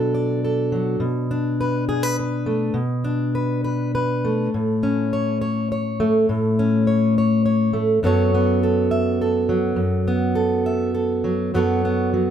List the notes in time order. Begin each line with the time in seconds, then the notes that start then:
Already playing: B2 F#3 D4 A4 D5
0.14 D5
0.44 A4
0.72 F#3
1.00 B2
1.31 D4
1.61 B4
1.89 G#4
2.03 B4
2.20 B4
2.46 A3
2.74 B2
3.04 D4
3.35 B4
3.64 B4
3.95 B4
4.25 A3
4.54 A2
4.83 C#4
5.13 C#5
5.41 C#5
5.72 C#5
6.00 A3
6.29 A2
6.59 C#4
6.87 C#5
7.18 C#5
7.46 C#5
7.73 A3
8.03 F#2 F#3 B3 A4 C#5
8.35 B3
8.63 A4
8.91 E5
9.21 A4
9.49 F#3
9.76 F#2
10.08 B3
10.35 A4
10.66 E5
10.95 A4
11.24 F#3
11.54 F#2 F#3 B3 A4 C#5
11.85 B3
12.14 F#3